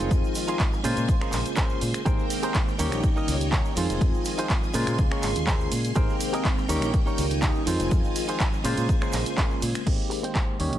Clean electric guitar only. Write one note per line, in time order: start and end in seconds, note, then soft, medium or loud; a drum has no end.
0.00 0.35 D#4 medium
0.00 0.35 F4 medium
0.00 0.35 G#4 medium
0.00 0.36 C5 loud
0.48 0.59 D#4 medium
0.48 0.60 F4 medium
0.48 0.60 G#4 medium
0.48 0.60 C5 loud
0.72 muted clean electric guitar stroke medium
0.84 1.13 C#4 medium
0.84 1.14 G#4 medium
0.84 1.14 A#4 medium
0.84 1.14 C5 loud
1.21 1.39 C#4 loud
1.21 1.39 G#4 loud
1.21 1.40 A#4 loud
1.21 1.40 C5 loud
1.57 1.81 C#4 medium
1.57 1.82 G#4 medium
1.57 1.82 A#4 medium
1.57 1.82 C5 loud
2.05 2.24 G4 loud
2.05 2.25 G#4 loud
2.05 2.25 A#4 loud
2.05 2.25 C5 loud
2.43 2.54 G4 medium
2.43 2.55 G#4 medium
2.43 2.55 A#4 medium
2.43 2.55 C5 loud
2.67 muted clean electric guitar stroke medium
2.79 3.08 D#4 medium
2.79 3.09 G4 medium
2.79 3.09 A#4 medium
2.79 3.09 C#5 loud
3.16 3.34 D#4 loud
3.16 3.34 G4 loud
3.16 3.35 A#4 loud
3.16 3.35 D#5 loud
3.52 3.75 D#4 medium
3.52 3.76 G4 medium
3.52 3.77 A#4 medium
3.52 3.77 C#5 loud
3.76 4.25 D#4 medium
3.76 4.25 F4 medium
3.76 4.26 G#4 medium
3.76 4.26 C5 loud
4.38 4.50 D#4 medium
4.38 4.50 F4 medium
4.38 4.50 G#4 medium
4.38 4.50 C5 loud
4.62 muted clean electric guitar stroke medium
4.74 5.04 C#4 medium
4.74 5.04 G#4 medium
4.74 5.04 A#4 medium
4.74 5.04 C5 loud
5.11 5.29 C#4 loud
5.11 5.29 G#4 loud
5.11 5.30 A#4 loud
5.11 5.30 C#5 loud
5.47 5.71 C#4 medium
5.47 5.72 G#4 medium
5.47 5.72 A#4 medium
5.47 5.72 C5 loud
5.96 6.15 G4 loud
5.96 6.15 G#4 loud
5.96 6.15 A#4 loud
5.96 6.15 C5 loud
6.33 6.45 G4 medium
6.33 6.45 G#4 medium
6.33 6.45 A#4 medium
6.33 6.45 D#5 loud
6.57 muted clean electric guitar stroke medium
6.69 6.99 D#4 medium
6.69 6.99 G4 medium
6.69 6.99 A#4 medium
6.69 6.99 C#5 loud
7.06 7.24 D#4 loud
7.06 7.25 G4 loud
7.06 7.25 A#4 loud
7.06 7.25 C#5 loud
7.42 7.65 D#4 medium
7.42 7.66 G4 medium
7.42 7.67 A#4 medium
7.42 7.67 D#5 loud
7.66 8.15 D#4 loud
7.66 8.16 F4 medium
7.66 8.16 G#4 medium
7.66 8.16 C5 loud
8.28 8.40 D#4 medium
8.28 8.40 F4 medium
8.28 8.40 G#4 medium
8.28 8.41 C5 loud
8.52 muted clean electric guitar stroke medium
8.64 8.94 C#4 medium
8.64 8.94 G#4 medium
8.64 8.94 A#4 medium
8.64 8.95 C5 loud
9.01 9.20 C#4 loud
9.01 9.20 G#4 loud
9.01 9.20 A#4 loud
9.01 9.20 C5 loud
9.37 9.62 C#4 medium
9.37 9.62 G#4 medium
9.37 9.62 A#4 medium
9.37 9.63 C5 loud
10.10 muted clean electric guitar stroke loud
10.23 10.59 C4 medium
10.23 10.59 G4 medium
10.23 10.59 C5 medium
10.59 10.79 D#4 medium
10.59 10.79 G4 medium
10.59 10.79 C#5 medium